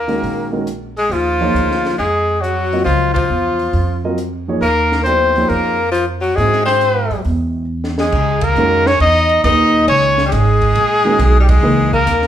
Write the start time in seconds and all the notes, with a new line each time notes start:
Already playing: D#2 A#3 A#4
0.08 D#3 G#3 C#4 F#4 A#4, open hi-hat
0.22 A#1, open hi-hat
0.52 D#3 G#3 C#4 F#4 A#4
0.67 closed hi-hat
0.97 G#3 G#4, open hi-hat
1.09 D#2 F3 F4, open hi-hat
1.41 F3 A#3 D#4 G#4 C#5
1.54 D2, closed hi-hat
1.71 snare
1.85 snare, open hi-hat
1.98 F2 G#3 G#4, open hi-hat
2.41 F#3 F#4, closed hi-hat
2.72 F#3 C4 F4 A#4 D#5, open hi-hat
2.84 C#2 F3 F4, open hi-hat
3.14 F3 F4, kick, ride
3.30 E2
3.59 open hi-hat
3.73 F2, open hi-hat
4.04 F#3 C4 F4 A#4 D#5
4.18 closed hi-hat
4.48 F3 A#3 D#4 G#4 C#5
4.61 D#2 A#3 A#4, open hi-hat
4.92 snare
5.04 F#3 B3 C4 E4 A4 C5 D5, closed hi-hat
5.36 F3 A#3 D#4 G#4 C#5, open hi-hat
5.48 F2 A#3 A#4, open hi-hat
5.91 F3 F4, closed hi-hat
6.21 F#3 F#4, open hi-hat
6.35 G#2 G#3 C4 E4 G#4, open hi-hat
6.39 F#4 C5
6.53 snare
6.65 C4 C5, snare
6.81 closed hi-hat
7.10 F#2, open hi-hat
7.25 E2, open hi-hat
7.84 snare
7.98 G#3 G#4, snare
8.12 C#2, kick, crash
8.41 A#3 A#4, kick, ride
8.55 F2 D#3 G#3 C#4 F#4 A#4, hi-hat pedal
8.86 C#4 C#5, snare
9.00 E2 D#4 D#5, ride
9.29 ride
9.44 D#2 A#2 D#3 D#4 G#4 B4 D#5, hi-hat pedal, ride
9.88 C#2 C#4 C#5, ride
10.18 snare
10.26 G3 G4
10.31 G#1 G#3 G#4, hi-hat pedal, ride
10.61 kick, ride
10.75 A#1, ride
11.05 D#3 G#3 C#4 F#4 A#4
11.19 B1, hi-hat pedal, ride
11.40 G3 G4
11.48 G#3 G#4, kick, ride
11.63 C#2 E3 A#3 D#4 G#4 B4
11.93 A#3 A#4, kick
12.06 D#2, hi-hat pedal, ride
12.22 snare